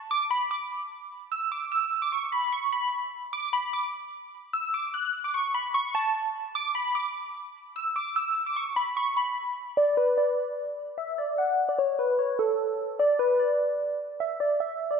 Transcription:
0.11 0.29 D6 loud
0.31 0.49 B5 medium
0.51 1.27 D6 medium
1.32 1.49 E6 medium
1.52 1.69 D6 medium
1.72 2.00 E6 loud
2.02 2.11 D6 medium
2.12 2.30 C#6 medium
2.32 2.50 B5 medium
2.52 2.70 C#6 medium
2.73 3.29 B5 medium
3.33 3.51 D6 loud
3.53 3.71 B5 medium
3.73 4.50 D6 medium
4.53 4.71 E6 medium
4.74 4.92 D6 medium
4.94 5.22 F#6 medium
5.24 5.33 D6 medium
5.34 5.52 C#6 medium
5.54 5.72 B5 medium
5.74 5.92 C#6 loud
5.95 6.51 A5 medium
6.55 6.73 D6 loud
6.75 6.93 B5 medium
6.95 7.72 D6 medium
7.76 7.94 E6 medium
7.96 8.14 D6 medium
8.16 8.44 E6 loud
8.46 8.55 D6 medium
8.56 8.74 C#6 medium
8.76 8.94 B5 medium
8.97 9.14 C#6 medium
9.17 9.74 B5 medium
9.77 9.95 D5 loud
9.97 10.15 B4 medium
10.18 10.94 D5 medium
10.98 11.16 E5 medium
11.18 11.36 D5 medium
11.38 11.67 F#5 medium
11.69 11.77 D5 medium
11.79 11.96 C#5 medium
11.99 12.17 B4 medium
12.19 12.37 C#5 medium
12.39 12.96 A4 medium
12.99 13.17 D5 loud
13.19 13.37 B4 medium
13.39 14.16 D5 medium
14.20 14.38 E5 medium
14.40 14.58 D5 medium
14.60 14.89 E5 loud
14.91 15.00 D5 medium

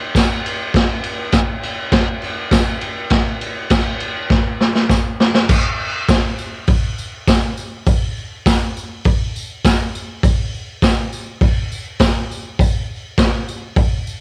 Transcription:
0.15 kick loud
0.15 snare loud
0.15 ride loud
0.15 tambourine loud
0.46 ride medium
0.74 kick loud
0.74 snare loud
0.74 ride loud
1.04 ride medium
1.32 kick loud
1.32 snare loud
1.32 ride loud
1.32 tambourine loud
1.63 ride medium
1.92 kick loud
1.92 snare loud
1.92 ride loud
2.22 ride medium
2.52 kick loud
2.52 snare loud
2.52 ride medium
2.52 tambourine medium
2.81 ride medium
3.10 kick loud
3.10 snare loud
3.10 ride medium
3.41 ride medium
3.70 kick loud
3.70 snare loud
3.70 ride loud
3.70 tambourine medium
4.00 ride medium
4.30 kick loud
4.30 snare medium
4.60 snare medium
4.75 snare medium
4.89 kick loud
4.89 snare medium
4.89 tambourine loud
5.20 snare loud
5.34 snare loud
5.49 kick loud
5.49 crash loud
5.49 tambourine medium
5.80 tambourine soft
6.09 kick loud
6.09 snare loud
6.09 open hi-hat medium
6.09 tambourine medium
6.39 tambourine medium
6.67 kick loud
6.67 open hi-hat medium
6.67 tambourine soft
6.98 tambourine medium
7.28 kick loud
7.28 snare loud
7.28 open hi-hat medium
7.28 tambourine medium
7.57 tambourine medium
7.86 kick loud
7.86 open hi-hat medium
7.86 tambourine medium
8.17 tambourine soft
8.45 kick loud
8.45 snare loud
8.45 open hi-hat medium
8.45 tambourine loud
8.77 tambourine medium
9.04 kick loud
9.04 open hi-hat medium
9.04 tambourine soft
9.36 tambourine medium
9.64 kick loud
9.64 snare loud
9.64 open hi-hat medium
9.64 tambourine loud
9.95 tambourine medium
10.23 kick loud
10.23 open hi-hat medium
10.23 tambourine medium
10.54 tambourine soft
10.82 kick loud
10.82 snare loud
10.82 open hi-hat medium
10.82 tambourine medium
11.13 tambourine medium
11.41 kick loud
11.41 open hi-hat medium
11.41 tambourine soft
11.72 tambourine medium
11.99 kick loud
11.99 snare loud
11.99 open hi-hat medium
11.99 tambourine medium
12.32 tambourine medium
12.59 kick loud
12.59 open hi-hat medium
12.59 tambourine medium
12.90 tambourine soft
13.18 kick loud
13.18 snare loud
13.18 open hi-hat medium
13.18 tambourine medium
13.48 tambourine medium
13.76 kick loud
13.76 open hi-hat medium
13.76 tambourine soft
14.07 tambourine medium

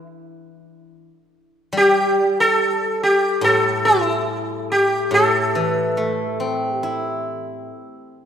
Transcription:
0.00 0.92 E3 medium
1.73 4.26 G3 medium
1.77 2.40 G4 medium
2.40 3.03 A4 medium
3.03 3.44 G4 medium
3.41 5.10 A2 medium
3.41 3.87 A4 medium
3.85 4.72 E4 medium
4.72 5.14 G4 medium
5.11 7.68 A2 medium
5.11 6.75 A4 medium
5.55 7.26 E3 soft
5.97 7.69 A3 soft
6.40 8.13 C4 soft
6.75 7.66 G4 medium
6.83 8.25 E4 soft

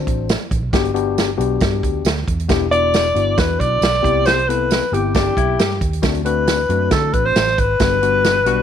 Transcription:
0.00 0.32 C4 medium
0.00 0.32 D4 medium
0.00 0.35 F#4 medium
0.00 0.33 C5 medium
0.07 0.35 A1 medium
0.07 kick medium
0.07 closed hi-hat medium
0.29 snare loud
0.29 closed hi-hat medium
0.29 tambourine medium
0.51 0.60 A1 medium
0.51 kick medium
0.51 closed hi-hat medium
0.62 0.73 B1 medium
0.73 1.36 G1 loud
0.73 0.91 B3 medium
0.73 0.90 D4 medium
0.73 0.90 F#4 medium
0.73 0.91 G4 medium
0.73 kick loud
0.73 snare loud
0.73 closed hi-hat medium
0.73 tambourine medium
0.85 closed hi-hat soft
0.94 1.29 B3 medium
0.94 1.29 D4 medium
0.94 1.30 F#4 medium
0.94 1.30 G4 medium
0.94 closed hi-hat medium
1.18 snare medium
1.18 closed hi-hat medium
1.18 tambourine medium
1.37 1.58 B1 medium
1.37 2.08 B3 medium
1.37 2.08 D4 medium
1.37 2.08 F#4 medium
1.37 2.08 G4 medium
1.37 closed hi-hat medium
1.61 1.83 G2 medium
1.61 kick loud
1.61 snare loud
1.61 closed hi-hat medium
1.61 tambourine medium
1.83 2.02 D2 medium
1.83 kick medium
1.83 closed hi-hat medium
2.05 2.24 D2 medium
2.05 snare loud
2.05 closed hi-hat medium
2.05 tambourine medium
2.17 snare soft
2.28 2.46 E2 medium
2.28 kick medium
2.28 closed hi-hat medium
2.40 closed hi-hat medium
2.49 3.12 E1 loud
2.49 2.66 B3 medium
2.49 2.67 D4 medium
2.49 2.67 E4 medium
2.49 2.67 G4 medium
2.49 kick loud
2.49 snare loud
2.49 closed hi-hat medium
2.49 tambourine medium
2.71 3.06 B3 medium
2.71 3.06 D4 medium
2.71 3.06 E4 medium
2.71 3.06 F#4 medium
2.71 3.40 D5 loud
2.71 closed hi-hat medium
2.94 snare loud
2.94 closed hi-hat medium
2.94 tambourine medium
3.15 3.35 G1 medium
3.15 3.85 B3 medium
3.15 3.85 D4 medium
3.15 3.85 E4 medium
3.15 3.85 F#4 medium
3.15 closed hi-hat medium
3.38 3.57 E2 medium
3.38 3.61 B4 medium
3.38 kick loud
3.38 snare loud
3.38 closed hi-hat medium
3.38 tambourine medium
3.60 3.79 B1 medium
3.60 4.28 D5 loud
3.60 kick medium
3.60 closed hi-hat medium
3.81 4.01 B1 medium
3.81 snare loud
3.81 closed hi-hat medium
3.81 tambourine medium
3.94 snare soft
4.02 4.80 C2 medium
4.02 4.39 B3 medium
4.02 4.39 C4 medium
4.02 4.39 E4 medium
4.02 4.39 G4 medium
4.02 kick medium
4.02 closed hi-hat medium
4.26 4.50 C5 medium
4.26 snare loud
4.26 closed hi-hat medium
4.26 tambourine medium
4.39 closed hi-hat soft
4.48 4.83 B3 medium
4.48 4.84 C4 medium
4.48 4.84 E4 medium
4.48 4.84 A4 medium
4.48 4.95 B4 loud
4.48 closed hi-hat medium
4.71 snare loud
4.71 closed hi-hat medium
4.71 tambourine medium
4.92 5.30 G1 medium
4.92 5.63 B3 medium
4.92 5.63 C4 medium
4.92 5.63 E4 medium
4.92 5.63 G4 medium
4.92 5.15 G4 medium
4.92 closed hi-hat medium
5.15 5.36 D4 medium
5.15 5.78 G4 medium
5.15 kick loud
5.15 snare loud
5.15 closed hi-hat medium
5.15 tambourine medium
5.37 5.56 B1 medium
5.37 5.58 E4 medium
5.37 kick medium
5.37 closed hi-hat medium
5.59 5.78 G2 medium
5.59 6.01 G4 medium
5.59 snare loud
5.59 closed hi-hat medium
5.59 tambourine medium
5.70 snare soft
5.81 6.00 D#2 medium
5.81 kick medium
5.81 closed hi-hat medium
5.93 closed hi-hat medium
6.02 6.66 D2 loud
6.02 6.20 A3 medium
6.02 6.20 C4 medium
6.02 6.21 D4 medium
6.02 6.20 F#4 medium
6.02 kick loud
6.02 snare loud
6.02 closed hi-hat medium
6.02 tambourine medium
6.15 closed hi-hat soft
6.25 6.60 A3 medium
6.25 6.60 C4 medium
6.25 6.60 D4 medium
6.25 6.61 F#4 medium
6.25 6.88 B4 loud
6.25 closed hi-hat medium
6.47 snare loud
6.47 closed hi-hat medium
6.47 tambourine medium
6.69 6.88 F#2 medium
6.69 7.39 A3 medium
6.69 7.39 C4 medium
6.69 7.40 D4 medium
6.69 7.40 F#4 medium
6.69 closed hi-hat medium
6.91 7.10 D3 loud
6.91 7.15 A4 medium
6.91 kick loud
6.91 snare loud
6.91 closed hi-hat medium
6.91 tambourine medium
7.13 7.33 A1 medium
7.13 7.27 B4 medium
7.13 kick medium
7.13 closed hi-hat medium
7.26 7.61 C5 loud
7.36 7.55 A1 medium
7.36 snare loud
7.36 closed hi-hat medium
7.36 tambourine medium
7.47 snare soft
7.58 7.77 G#1 medium
7.58 8.62 B4 loud
7.58 kick medium
7.58 closed hi-hat medium
7.80 8.46 G1 medium
7.80 7.98 G3 medium
7.80 7.98 B3 medium
7.80 7.98 D4 medium
7.80 7.98 F#4 medium
7.80 kick loud
7.80 snare loud
7.80 closed hi-hat medium
7.80 tambourine medium
8.02 8.37 G3 medium
8.02 8.37 B3 medium
8.02 8.38 D4 medium
8.02 8.38 F#4 medium
8.02 closed hi-hat medium
8.24 snare loud
8.24 closed hi-hat medium
8.24 tambourine medium
8.46 8.62 B1 medium
8.46 8.62 G3 medium
8.46 8.62 B3 medium
8.46 8.62 D4 medium
8.46 8.62 F#4 medium
8.46 closed hi-hat medium

